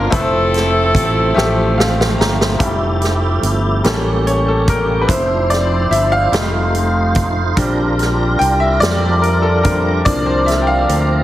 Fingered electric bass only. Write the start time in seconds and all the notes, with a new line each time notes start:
0.13 F1
0.95 A1
1.36 A1
2.19 G1
2.60 F1
3.42 G1
3.84 A1
5.09 F1
5.90 G1
6.32 F1
7.57 A#1
8.40 C2
8.81 F2
10.06 C2
10.89 D2